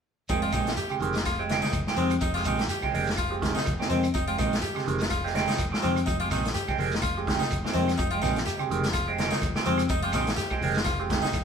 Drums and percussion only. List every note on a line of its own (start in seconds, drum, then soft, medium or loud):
0.29 kick medium
0.29 closed hi-hat medium
0.29 shekere medium
0.52 kick medium
0.52 closed hi-hat soft
0.52 high conga medium
0.52 claves medium
0.52 shekere medium
0.66 snare medium
0.66 closed hi-hat soft
0.66 shekere soft
0.77 closed hi-hat medium
0.77 shekere medium
0.89 high conga medium
0.89 claves medium
0.89 shekere soft
1.00 closed hi-hat soft
1.00 high conga medium
1.00 shekere soft
1.13 snare medium
1.13 closed hi-hat soft
1.13 shekere medium
1.25 kick medium
1.25 snare soft
1.25 closed hi-hat medium
1.25 claves medium
1.25 shekere medium
1.49 snare medium
1.49 closed hi-hat soft
1.49 high conga medium
1.62 snare medium
1.62 closed hi-hat soft
1.62 high conga medium
1.72 kick medium
1.72 closed hi-hat medium
1.72 high conga medium
1.72 claves medium
1.72 shekere medium
1.87 snare medium
1.96 closed hi-hat soft
1.96 shekere soft
2.10 closed hi-hat soft
2.10 claves medium
2.10 shekere medium
2.21 kick medium
2.21 closed hi-hat medium
2.21 shekere medium
2.36 snare soft
2.44 kick medium
2.44 closed hi-hat soft
2.44 high conga medium
2.44 claves medium
2.44 shekere medium
2.57 snare medium
2.57 closed hi-hat soft
2.57 shekere soft
2.69 closed hi-hat medium
2.69 shekere medium
2.82 kick medium
2.82 high conga medium
2.82 claves medium
2.82 shekere soft
2.94 open hi-hat medium
2.94 high conga medium
2.94 shekere soft
3.07 snare medium
3.07 shekere medium
3.17 kick medium
3.17 closed hi-hat medium
3.17 claves medium
3.17 shekere medium
3.42 kick medium
3.42 snare medium
3.42 closed hi-hat soft
3.42 high conga medium
3.56 snare medium
3.56 closed hi-hat soft
3.56 high conga medium
3.66 kick medium
3.66 closed hi-hat medium
3.66 high conga medium
3.66 claves medium
3.66 shekere medium
3.81 snare medium
3.90 closed hi-hat soft
3.90 high conga medium
3.90 shekere soft
4.03 closed hi-hat soft
4.03 claves medium
4.03 shekere medium
4.14 kick medium
4.14 closed hi-hat medium
4.14 shekere medium
4.38 kick medium
4.38 closed hi-hat soft
4.38 high conga medium
4.38 claves medium
4.38 shekere medium
4.52 snare medium
4.52 closed hi-hat soft
4.52 shekere soft
4.62 closed hi-hat medium
4.62 shekere medium
4.75 snare soft
4.75 high conga medium
4.75 claves medium
4.75 shekere soft
4.86 closed hi-hat soft
4.86 high conga medium
4.86 shekere soft
4.99 snare medium
4.99 closed hi-hat soft
4.99 shekere medium
5.10 kick medium
5.10 closed hi-hat medium
5.10 claves medium
5.10 shekere medium
5.26 snare soft
5.35 snare medium
5.35 closed hi-hat soft
5.35 high conga medium
5.48 snare medium
5.48 closed hi-hat medium
5.48 high conga medium
5.58 kick medium
5.58 closed hi-hat medium
5.58 claves medium
5.58 shekere medium
5.74 snare medium
5.83 closed hi-hat soft
5.83 high conga medium
5.83 shekere soft
5.96 closed hi-hat soft
5.96 claves medium
5.96 shekere medium
6.07 kick medium
6.07 closed hi-hat medium
6.07 shekere medium
6.30 kick medium
6.30 snare soft
6.30 closed hi-hat soft
6.30 high conga medium
6.30 claves medium
6.30 shekere medium
6.44 snare medium
6.44 closed hi-hat medium
6.44 shekere soft
6.55 closed hi-hat medium
6.55 shekere medium
6.68 kick medium
6.68 high conga medium
6.68 claves medium
6.68 shekere soft
6.78 open hi-hat medium
6.78 high conga medium
6.78 shekere soft
6.92 snare medium
6.92 shekere medium
7.02 kick medium
7.02 closed hi-hat medium
7.02 claves medium
7.02 shekere medium
7.27 kick medium
7.27 snare medium
7.27 closed hi-hat soft
7.27 high conga medium
7.40 snare medium
7.40 closed hi-hat soft
7.40 high conga medium
7.51 kick medium
7.51 closed hi-hat medium
7.51 high conga medium
7.51 claves medium
7.51 shekere medium
7.66 snare medium
7.74 closed hi-hat soft
7.74 high conga medium
7.74 shekere soft
7.88 snare soft
7.88 closed hi-hat soft
7.88 claves medium
7.88 shekere medium
7.99 kick medium
7.99 closed hi-hat medium
7.99 shekere medium
8.22 kick medium
8.22 snare soft
8.22 closed hi-hat soft
8.22 high conga medium
8.22 claves medium
8.22 shekere medium
8.36 snare medium
8.36 closed hi-hat soft
8.36 shekere soft
8.47 closed hi-hat medium
8.47 shekere medium
8.59 high conga medium
8.59 claves medium
8.59 shekere soft
8.71 closed hi-hat soft
8.71 high conga medium
8.71 shekere soft
8.83 snare medium
8.83 closed hi-hat soft
8.83 shekere medium
8.94 kick medium
8.94 closed hi-hat medium
8.94 claves medium
8.94 shekere medium
9.18 snare medium
9.18 closed hi-hat medium
9.18 high conga medium
9.31 snare medium
9.31 closed hi-hat medium
9.31 high conga medium
9.42 kick medium
9.42 closed hi-hat medium
9.42 claves medium
9.42 shekere medium
9.56 snare medium
9.66 closed hi-hat soft
9.66 high conga medium
9.66 shekere soft
9.78 closed hi-hat soft
9.78 claves medium
9.78 shekere medium
9.89 kick medium
9.89 closed hi-hat medium
9.89 shekere medium
10.12 kick medium
10.12 snare soft
10.12 closed hi-hat soft
10.12 high conga medium
10.12 claves medium
10.12 shekere medium
10.26 snare medium
10.26 closed hi-hat medium
10.26 shekere soft
10.37 snare soft
10.37 closed hi-hat medium
10.37 shekere medium
10.50 kick medium
10.50 claves medium
10.50 shekere soft
10.62 open hi-hat medium
10.62 high conga medium
10.62 shekere soft
10.74 snare medium
10.74 shekere medium
10.85 kick medium
10.85 snare soft
10.85 closed hi-hat medium
10.85 claves medium
10.85 shekere medium
11.10 kick medium
11.10 snare medium
11.10 closed hi-hat soft
11.10 high conga medium
11.22 snare medium
11.22 closed hi-hat soft
11.22 high conga medium
11.33 kick medium
11.33 closed hi-hat medium
11.33 claves medium
11.33 shekere medium